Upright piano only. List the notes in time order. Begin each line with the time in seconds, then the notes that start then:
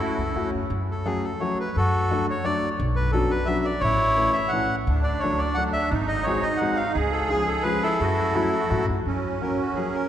0.00 A3 C#4 E4 F#4
0.35 A3 C#4 E4 F#4
1.05 F#3 A3 C#4 F#4 A4
1.41 F#3 A3 C#4 F#4 A4
2.11 F#3 A3 D4 F#4 A4
2.44 F#3 A3 D4 F#4 A4
3.13 F#3 B3 C#4 D4 F#4
3.47 F#3 B3 C#4 D4 F#4
4.17 E3 A3 C#4 E4 A4
4.52 E3 A3 C#4 E4 A4
5.23 F#3 A3 D4 F#4 A4
5.57 F#3 A3 D4 F#4 A4
6.27 G#3 C4 D#4 F#4 G#4
6.61 G#3 C4 D#4 F#4 G#4
7.29 F3 G#3 C#4 F4 G#4
7.64 F3 G#3 C#4 F4 G#4
8.35 F#3 A3 C#4 E4 F#4
8.70 F#3 A3 C#4 E4 F#4
9.41 F#3 A#3 C#4 F#4
9.76 F#3 A#3 C#4 F#4